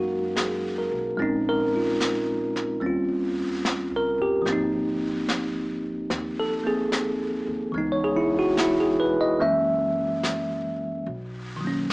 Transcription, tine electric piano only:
Already playing: F#3 G#3 A#3 C#4 D#4 F#4 A#4 F5
0.36 G#4
0.78 A#4
1.17 G#3 C4 C#4
1.22 D#4
1.49 A#4
1.76 F4
2.80 G3 C4 C#4
2.86 F4
3.96 A#4
4.22 G4
4.42 F3 A#3
4.49 C4 D#4
6.40 A4
6.64 A#3 C4 G#4
7.72 E3 G#3 B3
7.78 D#4
7.92 C#5
8.04 G#4
8.17 E4
8.39 F#4
8.60 E4
8.80 G#4
9.00 B4
9.21 D#5
9.39 E3 G#3 A#3 C#4 E5
11.56 D#3
11.61 F#3 A#3
11.67 C#4

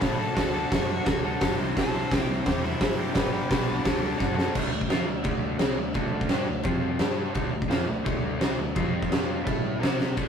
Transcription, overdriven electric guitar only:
0.00 D3 D4 F#4 A4
0.17 D3 D4 F#4 A4
0.34 D3 D4 F#4 A4
0.52 D3 D4 F#4 A4
0.70 D3 D4 F#4 A4
0.88 D3 D4 F#4 A4
1.05 D3 D4 F#4 A4
1.23 D3 D4 F#4 A4
1.40 D3 D4 F#4 A4
1.56 C3 E3 G3 C4 E4
1.60 C5
1.75 C3 E3 G3 C4 E4
1.79 C5
1.92 C3 E3 G3 C4 E4 C5
2.10 C3 E3 G3 C4 E4 C5
2.26 C3 E3 G3 C4 E4
2.30 C5
2.43 C3 E3 G3 C4 E4 C5
2.61 C3 E3 G3 C4 E4 C5
2.77 C3 E3 G3 C4 E4 C5
2.95 C3 E3 G3 C4 E4 C5
3.13 G3 B3 D4 B4
3.31 G3 B3 D4 B4
3.48 G3 B3 D4 B4
3.66 G3 B3 D4 B4
3.83 D3 D4 F#4 A4
4.00 D3 D4 F#4 A4
4.17 D3 D4 F#4 A4
4.34 D3 D4 F#4 A4
4.52 D3 A3 D4
4.71 D3 A3
4.89 F3 C4 F4
5.06 D3 A3
5.23 D3 A3 D4
5.59 C3 G3 C4
5.78 D3 A3
5.95 D3 A3 D4
6.29 G3 D4 G4
6.47 D3 A3
6.63 F3 C4 F4
6.99 G3 D4 G4
7.34 D3 A3 D4
7.52 D3 A3
7.68 F3 C4 F4
7.88 D3 A3
8.04 D3 A3 D4
8.39 C3 G3 C4
8.57 D3 A3
8.75 F3 C4 F4
9.44 A3 E4 A4
9.80 C4 G4 C5
10.16 D3 A3 D4

